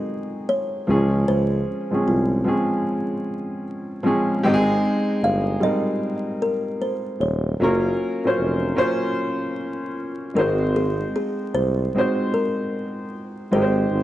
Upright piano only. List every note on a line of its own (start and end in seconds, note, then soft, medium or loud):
0.00 0.48 F#3 medium
0.00 0.48 G#3 medium
0.00 0.49 C4 medium
0.00 0.49 D#4 medium
0.00 0.50 G#4 medium
0.87 1.67 F3 medium
0.87 1.67 G#3 medium
0.87 1.68 C#4 medium
0.87 1.68 G#4 medium
1.91 2.34 F3 medium
1.91 2.35 G#3 medium
1.91 2.35 C4 medium
1.91 2.36 C#4 medium
1.91 2.36 G#4 medium
2.44 3.63 F3 medium
2.44 3.63 G#3 medium
2.44 3.64 C4 medium
2.44 3.64 C#4 medium
2.44 3.65 G#4 medium
4.03 4.36 F3 medium
4.03 4.36 G#3 medium
4.03 4.37 C4 medium
4.03 4.37 C#4 medium
4.03 4.37 G#4 medium
4.43 5.34 G#3 loud
4.43 5.35 C4 loud
4.43 5.35 D#4 loud
4.43 4.46 G4 loud
4.43 4.54 G4 loud
4.54 5.39 G#4 loud
5.60 6.79 G3 medium
5.60 6.79 G#3 medium
5.60 6.80 C4 medium
5.60 6.80 D#4 medium
5.60 6.81 A#4 medium
7.60 8.05 F#3 medium
7.60 8.05 A#3 medium
7.60 8.06 C#4 medium
7.60 8.06 F4 medium
7.60 8.07 A#4 loud
8.23 8.66 F#3 medium
8.23 8.67 A#3 medium
8.23 8.67 C#4 medium
8.23 8.68 F4 medium
8.23 8.68 C5 medium
8.75 9.94 F#3 medium
8.75 9.94 A#3 medium
8.75 9.95 C#4 medium
8.75 9.95 F4 medium
8.75 9.96 C5 loud
10.35 11.64 G#3 medium
10.35 11.64 C4 medium
10.35 11.65 D#4 medium
10.35 11.65 F#4 medium
10.35 11.66 C5 medium
11.95 13.12 G#3 medium
11.95 13.12 C4 medium
11.95 13.13 D#4 medium
11.95 13.13 F#4 medium
11.95 13.13 C5 medium
13.51 14.03 G#3 medium
13.51 14.03 C4 medium
13.51 14.03 D#4 medium
13.51 14.03 G4 medium
13.51 13.62 A#4 medium
13.62 14.03 C5 medium